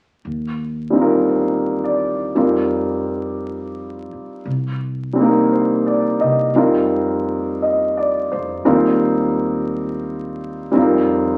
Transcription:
0.25 upright bass D#2
0.90 grand piano G3 C4
0.95 grand piano D#4 F4
1.01 grand piano A#4
1.30 grand piano C5
1.84 grand piano D5
2.35 upright bass F2, grand piano G3 C4 D#4 F4 A#4
4.13 muted upright bass stroke
4.45 upright bass C2
5.13 grand piano G3 C4
5.19 grand piano A#3 D#4
5.24 grand piano A#4
5.52 grand piano C5
5.87 grand piano D5
6.21 upright bass C3, grand piano D#5
6.55 upright bass F2, grand piano G3 C4 D#4 F4 A#4
7.62 grand piano D#5
7.97 grand piano D5
8.32 upright bass F2, grand piano C5
8.65 upright bass D#2, grand piano G3 C4 D#4 F4 A#4
10.71 upright bass F2, grand piano G3 C4
10.76 grand piano D#4 F4
10.82 grand piano A#4

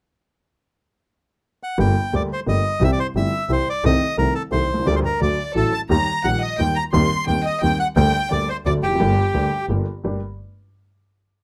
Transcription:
1.63 bandoneon F#5
1.78 upright piano G1 G2 D3 G3 A#3 G4, double bass G1, bandoneon G5
2.13 double bass D2, upright piano D2 D3 G3 A#3 G4, bandoneon D5
2.33 bandoneon C5
2.46 upright piano G1 G2 D3 G3 A#3 G4, double bass G1, bandoneon D#5
2.80 double bass C2, upright piano C2 C3 E3 G3 C4 G4, bandoneon E5
2.92 bandoneon D5
2.99 bandoneon C5
3.15 double bass G1, upright piano G1 G2 E3 G3 C4 G4, bandoneon E5
3.49 double bass C2, upright piano C2 C3 E3 G3 C4 G4, bandoneon C5
3.69 bandoneon D5
3.84 double bass C2, upright piano C2 C3 D#3 A3 C4 A4, bandoneon D#5
4.18 upright piano C2 C3 D#3 A3 C4 A4, double bass C2, bandoneon A#4
4.35 bandoneon A4
4.51 upright piano C2 C3 D#3 A3 C4 A4, double bass C2, bandoneon C5
4.69 double bass C2
4.74 upright piano B1
4.79 upright piano C2
4.83 upright piano C#2 D2 D3 G3 A#3 G4, double bass D2, bandoneon D5
4.96 bandoneon C5
5.05 bandoneon A#4
5.20 double bass D2, upright piano D2 D3 F#3 A3 F#4, violin D5, bandoneon D5
5.55 double bass A1, upright piano A1 A2 D3 F#3 A3 F#4, violin A4, bandoneon A4
5.73 violin A5, bandoneon A5
5.89 double bass D#2, upright piano D#2 D#3 G3 A#3 G4, violin A#5, bandoneon A#5
6.24 upright piano A#1 A#2 D#3 G3 A#3 G4, double bass A#1, bandoneon F#5, violin F#5
6.41 violin D#5, bandoneon D#5
6.59 double bass D#2, upright piano D#2 D#3 G3 A#3 G4, violin G5, bandoneon G5
6.76 violin A#5, bandoneon A#5
6.93 upright piano D#2 D#3 G3 C4 G4, double bass D#2, violin C6, bandoneon C6
7.27 upright piano D#2 D#3 G3 C4 G4, double bass D#2, violin G5, bandoneon G5
7.45 violin D#5, bandoneon D#5
7.62 upright piano D#2 D#3 G3 C4 G4, double bass D#2, violin G5, bandoneon G5
7.79 bandoneon F#5, violin F#5
7.96 double bass D2, upright piano D2 D3 G3 A#3 G4, bandoneon G5, violin G5
8.30 upright piano D2 D3 G3 A#3 G4, double bass D2, violin D5, bandoneon D5
8.49 violin C5, bandoneon C5
8.65 double bass D2, upright piano D2 D3 F#3 A3 F#4, bandoneon D5, violin D5
8.83 double bass F1, bandoneon G4, violin G4
8.87 upright piano E2
8.91 upright piano F2 F#2
9.00 double bass G1, upright piano G1 G2 D3 G3 A#3 G4
9.34 upright piano D2 D3 G3 A#3 G4, double bass D2
9.69 double bass G1, upright piano G1 G2 D3 G3 A#3 G4
10.04 double bass G1, upright piano G2 A#3 D4 G4

